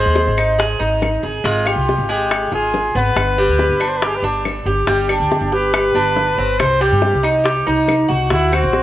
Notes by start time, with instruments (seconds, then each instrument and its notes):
Already playing: cuban tres G#3, trumpet C5
0.06 upright bass D#2
0.16 high bongo
0.27 upright bass G#1
0.37 cuban tres D#4, high bongo, claves
0.59 cuban tres G#4, high bongo
0.79 upright bass G#1, cuban tres D#4, high bongo
1.02 high bongo, low bongo, claves
1.23 upright bass G#1, cuban tres G#4
1.44 upright bass G#1, cuban tres G#3, trumpet F4, high bongo
1.66 cuban tres F4, trumpet G4, high bongo, claves
1.76 upright bass C2
1.89 high bongo
1.98 upright bass G#1
2.09 cuban tres G#3, trumpet G4, high bongo
2.31 high bongo, claves
2.52 upright bass G#1, cuban tres F4, trumpet G#4, high bongo
2.74 high bongo, low bongo
2.95 upright bass G#1, cuban tres B3, trumpet B4
3.16 upright bass G1, high bongo, claves
3.38 cuban tres G3, high bongo
3.48 upright bass D2
3.59 high bongo
3.69 upright bass G1
3.80 cuban tres D4, high bongo, claves
3.88 trumpet C5
3.97 trumpet B4
4.02 cuban tres G4, high bongo
4.07 trumpet G#4
4.16 trumpet B4
4.22 upright bass G1, cuban tres D4, high bongo
4.45 high bongo, low bongo, claves
4.66 upright bass G1, cuban tres G4
4.87 upright bass G1, cuban tres G3, trumpet G4, high bongo
5.09 cuban tres D4, trumpet G4, high bongo, claves
5.20 upright bass D2
5.32 high bongo
5.41 upright bass G1
5.52 cuban tres G4, trumpet B4, high bongo
5.74 high bongo, claves
5.95 upright bass G1, cuban tres D4, high bongo
6.16 high bongo, low bongo
6.38 upright bass G1, cuban tres C4
6.59 upright bass C2, trumpet C5, high bongo, claves
6.81 cuban tres G3, trumpet G4, high bongo
6.92 upright bass G2
7.02 high bongo
7.13 upright bass C2
7.23 cuban tres D#4, high bongo, claves
7.44 cuban tres G4, high bongo
7.67 upright bass C2, cuban tres D#4, high bongo
7.88 high bongo, low bongo, claves
8.08 upright bass C2, cuban tres F#4
8.30 upright bass D2, trumpet E4, cuban tres F#4, high bongo
8.52 cuban tres C4, trumpet F#4, high bongo, claves
8.63 upright bass A1
8.73 high bongo